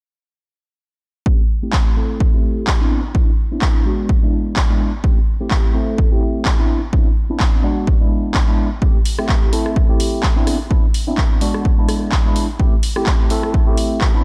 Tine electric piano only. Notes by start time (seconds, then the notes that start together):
1.26 A3 C4 E4 G4
1.62 A3 C4 E4 G4
1.96 A3 C4 E4 A4
2.33 A3 C4 E4 G4
2.81 B3 C4 D4 E4
3.15 B3 C4 D4 E4
3.52 B3 C4 D4 E4
3.85 G#3 B3 D4 F#4
4.22 G#3 B3 D4 E4
4.69 G#3 B3 D4 E4
5.04 A3 C4 E4 G4
5.40 A3 C4 E4 G4
5.74 A3 C4 E4 A4
6.11 A3 C4 E4 G4
6.58 B3 C4 D4 E4
6.93 B3 C4 D4 E4
7.30 B3 C4 D4 E4
7.63 G#3 B3 D4 F#4
8.00 G#3 B3 D4 E4
8.48 G#3 B3 D4 E4
8.82 A3 C4 E4 G4
9.18 A3 C4 E4 G4
9.52 A3 C4 E4 A4
9.89 A3 C4 E4 G4
10.36 B3 C4 D4 E4
10.70 B3 C4 D4 E4
11.07 B3 C4 D4 E4
11.41 G#3 B3 D4 F#4
11.78 G#3 B3 D4 E4
12.25 G#3 B3 D4 E4
12.59 A3 C4 E4 G4
12.96 A3 C4 E4 G4
13.30 A3 C4 E4 A4
13.67 A3 C4 E4 G4
14.14 B3 C4 D4 E4